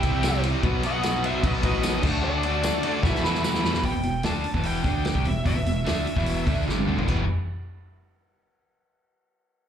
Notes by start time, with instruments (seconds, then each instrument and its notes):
Already playing: overdriven electric guitar C3 G3 C4, tonewheel organ E4 G4 C5 E5, lead electric guitar E5 G5
0.03 fingered electric bass C2, overdriven electric guitar C3 E3 G3 C4 E4, kick, ride
0.23 overdriven electric guitar C3 E3 G3 C4 E4, snare, ride, tambourine
0.43 overdriven electric guitar C3 E3 G3 C4 E4, ride
0.61 fingered electric bass B1, overdriven electric guitar B2 F#3 B3 D#4, tonewheel organ D#4 F#4 B4 D#5, kick, ride
0.65 overdriven electric guitar F#4
0.82 overdriven electric guitar B2 F#3 B3 D#4 F#4, lead electric guitar D#5, ride
0.87 lead electric guitar F#5
1.02 overdriven electric guitar B2 F#3 B3 D#4 F#4, snare, ride, tambourine
1.21 overdriven electric guitar B2 F#3 B3 D#4 F#4, lead electric guitar C5 E5, ride
1.43 fingered electric bass B1, overdriven electric guitar B2 F#3 B3 D#4 F#4, lead electric guitar B4 D#5, kick, ride
1.62 fingered electric bass A1, overdriven electric guitar B2 F#3 B3 D#4 F#4, lead electric guitar B4 D#5, kick, ride
1.82 overdriven electric guitar B2 F#3 B3 D#4 F#4, snare, ride, tambourine
2.01 fingered electric bass D2, overdriven electric guitar D3 A3 D4 F#4, tonewheel organ D4 F#4 A4 D5, kick, crash
2.23 overdriven electric guitar D3 A3 D4 F#4, lead electric guitar A4 D5
2.43 overdriven electric guitar D3 A3 D4 F#4, ride
2.63 overdriven electric guitar D3 A3 D4 F#4, snare, ride, tambourine
2.83 overdriven electric guitar D3 A3 D4 F#4, ride
3.02 overdriven electric guitar E2 B2 E3 G3 B3 E4, fingered electric bass E2, tonewheel organ E4 G4 B4 E5, lead electric guitar B4 E5, kick, snare
3.15 snare
3.22 overdriven electric guitar E2 B2 E3 G3 B3 E4, fingered electric bass E2, lead electric guitar B5, snare
3.34 snare
3.42 overdriven electric guitar E2 B2 E3 G3 B3 E4, lead electric guitar B5, snare, tambourine
3.54 snare
3.63 overdriven electric guitar E2 B2 E3 G3 B3 E4, snare
3.74 snare
3.83 fingered electric bass E1, overdriven electric guitar E2 B2, lead electric guitar G5, kick, open hi-hat
3.92 fingered electric bass E1, overdriven electric guitar E2 B2
4.03 fingered electric bass E1, overdriven electric guitar E2 B2, open hi-hat
4.23 fingered electric bass D2, overdriven electric guitar D3 A3 D4, lead electric guitar A5, snare, open hi-hat
4.44 muted fingered electric bass stroke, muted overdriven electric guitar stroke, open hi-hat
4.54 fingered electric bass E1, overdriven electric guitar E2 B2 E3, kick
4.63 lead electric guitar G5, open hi-hat
4.84 fingered electric bass D2, overdriven electric guitar D3 A3 D4, kick, snare, open hi-hat
5.05 lead electric guitar G5, snare, open hi-hat
5.15 fingered electric bass C2, overdriven electric guitar C3 G3, kick
5.24 fingered electric bass E1, overdriven electric guitar E2 B2, lead electric guitar E5, open hi-hat
5.44 fingered electric bass E1, overdriven electric guitar E2 B2, lead electric guitar E5, kick, open hi-hat
5.54 fingered electric bass E1, overdriven electric guitar E2 B2
5.65 fingered electric bass E1, overdriven electric guitar E2 B2, open hi-hat
5.84 fingered electric bass D2, overdriven electric guitar D3 A3 D4, snare, open hi-hat
6.06 muted overdriven electric guitar stroke, muted fingered electric bass stroke, open hi-hat
6.15 fingered electric bass E1, overdriven electric guitar E2 B2 E3, kick, snare
6.26 open hi-hat
6.46 fingered electric bass D2, overdriven electric guitar D3 A3 D4, kick, open hi-hat
6.66 fingered electric bass G1, overdriven electric guitar G2 D3 G3, snare
6.79 high tom
6.86 fingered electric bass D2, overdriven electric guitar D3 A3, mid tom
6.96 fingered electric bass G1, overdriven electric guitar G2 D3, floor tom
7.06 fingered electric bass E1, overdriven electric guitar E2 B2 E3 G3 B3 E4, kick, crash